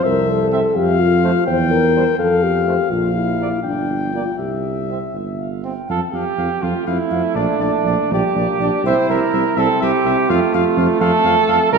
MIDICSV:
0, 0, Header, 1, 6, 480
1, 0, Start_track
1, 0, Key_signature, -1, "major"
1, 0, Tempo, 476569
1, 42, Time_signature, 6, 3, 24, 8
1, 2923, Tempo, 496689
1, 8203, Tempo, 479233
1, 11624, End_track
2, 0, Start_track
2, 0, Title_t, "Cornet"
2, 0, Program_c, 0, 56
2, 33, Note_on_c, 0, 76, 84
2, 506, Note_off_c, 0, 76, 0
2, 760, Note_on_c, 0, 77, 85
2, 1434, Note_off_c, 0, 77, 0
2, 1473, Note_on_c, 0, 79, 87
2, 2184, Note_off_c, 0, 79, 0
2, 2207, Note_on_c, 0, 77, 78
2, 2912, Note_off_c, 0, 77, 0
2, 2932, Note_on_c, 0, 77, 65
2, 3621, Note_off_c, 0, 77, 0
2, 3626, Note_on_c, 0, 79, 61
2, 4344, Note_off_c, 0, 79, 0
2, 4354, Note_on_c, 0, 76, 54
2, 5428, Note_off_c, 0, 76, 0
2, 5810, Note_on_c, 0, 77, 57
2, 5918, Note_off_c, 0, 77, 0
2, 6053, Note_on_c, 0, 77, 61
2, 6159, Note_off_c, 0, 77, 0
2, 6280, Note_on_c, 0, 77, 62
2, 6389, Note_off_c, 0, 77, 0
2, 6519, Note_on_c, 0, 77, 58
2, 6627, Note_off_c, 0, 77, 0
2, 6754, Note_on_c, 0, 77, 65
2, 6861, Note_off_c, 0, 77, 0
2, 6986, Note_on_c, 0, 77, 55
2, 7094, Note_off_c, 0, 77, 0
2, 7216, Note_on_c, 0, 74, 67
2, 7327, Note_off_c, 0, 74, 0
2, 7464, Note_on_c, 0, 74, 59
2, 7576, Note_off_c, 0, 74, 0
2, 7717, Note_on_c, 0, 74, 58
2, 7828, Note_off_c, 0, 74, 0
2, 7979, Note_on_c, 0, 74, 62
2, 8083, Note_off_c, 0, 74, 0
2, 8206, Note_on_c, 0, 74, 60
2, 8315, Note_off_c, 0, 74, 0
2, 8455, Note_on_c, 0, 74, 54
2, 8562, Note_off_c, 0, 74, 0
2, 8696, Note_on_c, 0, 76, 67
2, 8803, Note_off_c, 0, 76, 0
2, 8932, Note_on_c, 0, 76, 69
2, 9042, Note_off_c, 0, 76, 0
2, 9167, Note_on_c, 0, 76, 64
2, 9278, Note_off_c, 0, 76, 0
2, 9405, Note_on_c, 0, 76, 73
2, 9517, Note_off_c, 0, 76, 0
2, 9647, Note_on_c, 0, 76, 76
2, 9758, Note_off_c, 0, 76, 0
2, 9894, Note_on_c, 0, 76, 67
2, 10003, Note_off_c, 0, 76, 0
2, 10127, Note_on_c, 0, 77, 73
2, 10238, Note_off_c, 0, 77, 0
2, 10382, Note_on_c, 0, 77, 73
2, 10490, Note_off_c, 0, 77, 0
2, 10613, Note_on_c, 0, 77, 66
2, 10721, Note_off_c, 0, 77, 0
2, 10852, Note_on_c, 0, 77, 74
2, 10959, Note_off_c, 0, 77, 0
2, 11089, Note_on_c, 0, 77, 81
2, 11196, Note_off_c, 0, 77, 0
2, 11321, Note_on_c, 0, 77, 71
2, 11429, Note_off_c, 0, 77, 0
2, 11624, End_track
3, 0, Start_track
3, 0, Title_t, "Flugelhorn"
3, 0, Program_c, 1, 56
3, 526, Note_on_c, 1, 76, 78
3, 609, Note_off_c, 1, 76, 0
3, 1246, Note_on_c, 1, 72, 69
3, 1326, Note_off_c, 1, 72, 0
3, 1977, Note_on_c, 1, 72, 71
3, 2055, Note_off_c, 1, 72, 0
3, 2694, Note_on_c, 1, 72, 59
3, 2773, Note_off_c, 1, 72, 0
3, 3412, Note_on_c, 1, 74, 56
3, 3488, Note_off_c, 1, 74, 0
3, 4129, Note_on_c, 1, 74, 48
3, 4210, Note_off_c, 1, 74, 0
3, 4851, Note_on_c, 1, 76, 49
3, 4933, Note_off_c, 1, 76, 0
3, 5086, Note_on_c, 1, 76, 47
3, 5195, Note_off_c, 1, 76, 0
3, 5329, Note_on_c, 1, 77, 45
3, 5563, Note_off_c, 1, 77, 0
3, 5569, Note_on_c, 1, 79, 43
3, 5810, Note_off_c, 1, 79, 0
3, 5818, Note_on_c, 1, 69, 84
3, 5924, Note_off_c, 1, 69, 0
3, 6041, Note_on_c, 1, 67, 76
3, 6517, Note_on_c, 1, 65, 80
3, 6531, Note_off_c, 1, 67, 0
3, 6743, Note_off_c, 1, 65, 0
3, 6749, Note_on_c, 1, 64, 82
3, 7228, Note_on_c, 1, 62, 93
3, 7242, Note_off_c, 1, 64, 0
3, 7470, Note_off_c, 1, 62, 0
3, 7477, Note_on_c, 1, 62, 87
3, 7971, Note_on_c, 1, 67, 95
3, 7985, Note_off_c, 1, 62, 0
3, 8693, Note_off_c, 1, 67, 0
3, 8698, Note_on_c, 1, 72, 103
3, 8922, Note_off_c, 1, 72, 0
3, 8928, Note_on_c, 1, 70, 86
3, 9407, Note_off_c, 1, 70, 0
3, 9424, Note_on_c, 1, 69, 99
3, 9658, Note_off_c, 1, 69, 0
3, 9662, Note_on_c, 1, 67, 102
3, 10137, Note_on_c, 1, 65, 96
3, 10152, Note_off_c, 1, 67, 0
3, 10379, Note_off_c, 1, 65, 0
3, 10384, Note_on_c, 1, 65, 88
3, 10845, Note_off_c, 1, 65, 0
3, 10851, Note_on_c, 1, 69, 106
3, 11547, Note_off_c, 1, 69, 0
3, 11569, Note_on_c, 1, 70, 115
3, 11624, Note_off_c, 1, 70, 0
3, 11624, End_track
4, 0, Start_track
4, 0, Title_t, "French horn"
4, 0, Program_c, 2, 60
4, 55, Note_on_c, 2, 70, 88
4, 294, Note_on_c, 2, 69, 99
4, 309, Note_off_c, 2, 70, 0
4, 774, Note_on_c, 2, 67, 92
4, 790, Note_off_c, 2, 69, 0
4, 1021, Note_on_c, 2, 65, 96
4, 1036, Note_off_c, 2, 67, 0
4, 1477, Note_off_c, 2, 65, 0
4, 1483, Note_on_c, 2, 72, 86
4, 1589, Note_off_c, 2, 72, 0
4, 1721, Note_on_c, 2, 70, 98
4, 2193, Note_off_c, 2, 70, 0
4, 2205, Note_on_c, 2, 69, 94
4, 2450, Note_on_c, 2, 67, 83
4, 2465, Note_off_c, 2, 69, 0
4, 2935, Note_on_c, 2, 65, 80
4, 2950, Note_off_c, 2, 67, 0
4, 3157, Note_off_c, 2, 65, 0
4, 3163, Note_on_c, 2, 64, 74
4, 3625, Note_off_c, 2, 64, 0
4, 3632, Note_on_c, 2, 62, 72
4, 4107, Note_off_c, 2, 62, 0
4, 4121, Note_on_c, 2, 65, 62
4, 4366, Note_on_c, 2, 67, 49
4, 4381, Note_off_c, 2, 65, 0
4, 5090, Note_off_c, 2, 67, 0
4, 5815, Note_on_c, 2, 60, 53
4, 5922, Note_off_c, 2, 60, 0
4, 6058, Note_on_c, 2, 60, 57
4, 6163, Note_off_c, 2, 60, 0
4, 6290, Note_on_c, 2, 60, 61
4, 6396, Note_off_c, 2, 60, 0
4, 6516, Note_on_c, 2, 60, 60
4, 6625, Note_off_c, 2, 60, 0
4, 6763, Note_on_c, 2, 60, 54
4, 6868, Note_off_c, 2, 60, 0
4, 6996, Note_on_c, 2, 60, 61
4, 7102, Note_off_c, 2, 60, 0
4, 7227, Note_on_c, 2, 62, 50
4, 7336, Note_off_c, 2, 62, 0
4, 7460, Note_on_c, 2, 62, 58
4, 7573, Note_off_c, 2, 62, 0
4, 7707, Note_on_c, 2, 62, 67
4, 7820, Note_off_c, 2, 62, 0
4, 7947, Note_on_c, 2, 62, 66
4, 8059, Note_off_c, 2, 62, 0
4, 8189, Note_on_c, 2, 62, 57
4, 8302, Note_off_c, 2, 62, 0
4, 8439, Note_on_c, 2, 62, 68
4, 8549, Note_off_c, 2, 62, 0
4, 8695, Note_on_c, 2, 60, 63
4, 8802, Note_off_c, 2, 60, 0
4, 8928, Note_on_c, 2, 60, 57
4, 9038, Note_off_c, 2, 60, 0
4, 9175, Note_on_c, 2, 60, 73
4, 9285, Note_off_c, 2, 60, 0
4, 9413, Note_on_c, 2, 60, 65
4, 9522, Note_off_c, 2, 60, 0
4, 9651, Note_on_c, 2, 60, 61
4, 9761, Note_off_c, 2, 60, 0
4, 9892, Note_on_c, 2, 60, 67
4, 10002, Note_off_c, 2, 60, 0
4, 10139, Note_on_c, 2, 60, 69
4, 10247, Note_off_c, 2, 60, 0
4, 10383, Note_on_c, 2, 60, 61
4, 10490, Note_off_c, 2, 60, 0
4, 10619, Note_on_c, 2, 60, 81
4, 10726, Note_off_c, 2, 60, 0
4, 10866, Note_on_c, 2, 60, 64
4, 10970, Note_off_c, 2, 60, 0
4, 11094, Note_on_c, 2, 60, 69
4, 11200, Note_off_c, 2, 60, 0
4, 11329, Note_on_c, 2, 60, 77
4, 11435, Note_off_c, 2, 60, 0
4, 11624, End_track
5, 0, Start_track
5, 0, Title_t, "Trombone"
5, 0, Program_c, 3, 57
5, 528, Note_on_c, 3, 60, 70
5, 610, Note_off_c, 3, 60, 0
5, 1249, Note_on_c, 3, 57, 72
5, 1328, Note_off_c, 3, 57, 0
5, 1967, Note_on_c, 3, 55, 64
5, 2049, Note_off_c, 3, 55, 0
5, 2680, Note_on_c, 3, 57, 59
5, 2764, Note_off_c, 3, 57, 0
5, 3400, Note_on_c, 3, 58, 54
5, 3481, Note_off_c, 3, 58, 0
5, 4125, Note_on_c, 3, 58, 51
5, 4207, Note_off_c, 3, 58, 0
5, 4859, Note_on_c, 3, 60, 46
5, 4939, Note_off_c, 3, 60, 0
5, 5572, Note_on_c, 3, 60, 50
5, 5659, Note_off_c, 3, 60, 0
5, 6520, Note_on_c, 3, 57, 75
5, 7968, Note_on_c, 3, 55, 65
5, 7983, Note_off_c, 3, 57, 0
5, 8213, Note_on_c, 3, 58, 61
5, 8228, Note_off_c, 3, 55, 0
5, 8445, Note_off_c, 3, 58, 0
5, 8451, Note_on_c, 3, 62, 77
5, 8686, Note_off_c, 3, 62, 0
5, 8693, Note_on_c, 3, 64, 99
5, 9405, Note_off_c, 3, 64, 0
5, 9418, Note_on_c, 3, 60, 97
5, 10138, Note_on_c, 3, 57, 102
5, 10153, Note_off_c, 3, 60, 0
5, 11564, Note_off_c, 3, 57, 0
5, 11569, Note_on_c, 3, 55, 98
5, 11624, Note_off_c, 3, 55, 0
5, 11624, End_track
6, 0, Start_track
6, 0, Title_t, "Tuba"
6, 0, Program_c, 4, 58
6, 45, Note_on_c, 4, 36, 83
6, 644, Note_off_c, 4, 36, 0
6, 766, Note_on_c, 4, 41, 83
6, 1358, Note_off_c, 4, 41, 0
6, 1487, Note_on_c, 4, 40, 84
6, 2086, Note_off_c, 4, 40, 0
6, 2209, Note_on_c, 4, 41, 72
6, 2805, Note_off_c, 4, 41, 0
6, 2927, Note_on_c, 4, 34, 70
6, 3515, Note_off_c, 4, 34, 0
6, 3641, Note_on_c, 4, 31, 59
6, 4244, Note_off_c, 4, 31, 0
6, 4355, Note_on_c, 4, 36, 54
6, 4964, Note_off_c, 4, 36, 0
6, 5085, Note_on_c, 4, 31, 52
6, 5697, Note_off_c, 4, 31, 0
6, 5815, Note_on_c, 4, 41, 69
6, 5922, Note_off_c, 4, 41, 0
6, 6040, Note_on_c, 4, 41, 52
6, 6149, Note_off_c, 4, 41, 0
6, 6284, Note_on_c, 4, 41, 63
6, 6391, Note_off_c, 4, 41, 0
6, 6522, Note_on_c, 4, 41, 71
6, 6629, Note_off_c, 4, 41, 0
6, 6762, Note_on_c, 4, 41, 57
6, 6867, Note_off_c, 4, 41, 0
6, 6989, Note_on_c, 4, 41, 63
6, 7096, Note_off_c, 4, 41, 0
6, 7222, Note_on_c, 4, 34, 76
6, 7332, Note_off_c, 4, 34, 0
6, 7456, Note_on_c, 4, 34, 54
6, 7570, Note_off_c, 4, 34, 0
6, 7701, Note_on_c, 4, 34, 72
6, 7815, Note_off_c, 4, 34, 0
6, 7956, Note_on_c, 4, 34, 79
6, 8066, Note_off_c, 4, 34, 0
6, 8192, Note_on_c, 4, 34, 65
6, 8304, Note_off_c, 4, 34, 0
6, 8435, Note_on_c, 4, 34, 69
6, 8546, Note_off_c, 4, 34, 0
6, 8674, Note_on_c, 4, 36, 79
6, 8786, Note_off_c, 4, 36, 0
6, 8923, Note_on_c, 4, 36, 62
6, 9034, Note_off_c, 4, 36, 0
6, 9175, Note_on_c, 4, 36, 66
6, 9284, Note_off_c, 4, 36, 0
6, 9408, Note_on_c, 4, 36, 86
6, 9519, Note_off_c, 4, 36, 0
6, 9657, Note_on_c, 4, 36, 65
6, 9766, Note_off_c, 4, 36, 0
6, 9892, Note_on_c, 4, 36, 69
6, 10002, Note_off_c, 4, 36, 0
6, 10138, Note_on_c, 4, 41, 82
6, 10247, Note_off_c, 4, 41, 0
6, 10383, Note_on_c, 4, 41, 72
6, 10490, Note_off_c, 4, 41, 0
6, 10612, Note_on_c, 4, 41, 85
6, 10721, Note_off_c, 4, 41, 0
6, 10849, Note_on_c, 4, 41, 83
6, 10957, Note_off_c, 4, 41, 0
6, 11083, Note_on_c, 4, 41, 71
6, 11191, Note_off_c, 4, 41, 0
6, 11331, Note_on_c, 4, 41, 65
6, 11436, Note_off_c, 4, 41, 0
6, 11566, Note_on_c, 4, 36, 90
6, 11624, Note_off_c, 4, 36, 0
6, 11624, End_track
0, 0, End_of_file